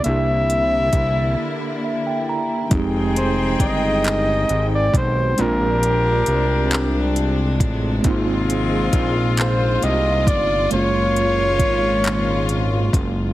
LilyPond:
<<
  \new Staff \with { instrumentName = "Flugelhorn" } { \time 6/8 \key f \dorian \tempo 4. = 45 e''2 r4 | r8 c''8 ees''4~ ees''16 d''16 c''8 | bes'2 r4 | r4. c''8 ees''8 d''8 |
des''2~ des''8 r8 | }
  \new Staff \with { instrumentName = "Tine electric piano" } { \time 6/8 \key f \dorian << { r2 e''16 g''16 bes''8 | r2. | r2. | r2. |
r2. | } \\ { <bes d' e' g'>2. | <g aes c' ees' g'>2. | <aes c' d' f'>2. | <bes c' ees' f'>2. |
<aes bes des' f'>2. | } >> }
  \new Staff \with { instrumentName = "Horn section" } { \time 6/8 \key f \dorian r2. | <c' ees' aes'>2~ <c' ees' aes'>8 r8 | <c' d' g'>2~ <c' d' g'>8 r8 | <aes c' f'>2~ <aes c' f'>8 r8 |
<bes des' f'>2~ <bes des' f'>8 r8 | }
  \new Staff \with { instrumentName = "String section" } { \clef bass \time 6/8 \key f \dorian << { e'2. | g''2. | d'2. | f'2.~ |
f'2. | } \\ { <d bes>2. | <ees aes>2. | <c aes>2.~ | <c aes>2. |
<bes, aes>2. | } >> }
  \new Staff \with { instrumentName = "Analog synth bass" } { \clef bass \time 6/8 \key f \dorian c,4 c,8 r4. | f,,4 g,,4 aes,,8 b,,8 | bes,,4 c,4. a,,8 | aes,,4 bes,,4 c,8 g,,8 |
ges,,4 aes,,4. ges,,8 | }
  \new DrumStaff \with { instrumentName = "Drums" } \drummode { \time 6/8 hh8 hh8 <hh bd>8 r4. | <hh bd>8 hh8 <hh bd>8 <hc hh>8 hh8 <hh bd>8 | hh8 hh8 hh8 <hc hh>8 hh8 <hh bd>8 | <hh bd>8 hh8 <hh bd>8 <hc hh>8 hh8 <hh bd>8 |
hh8 hh8 <hh bd>8 <hc hh>8 hh8 <hh bd>8 | }
>>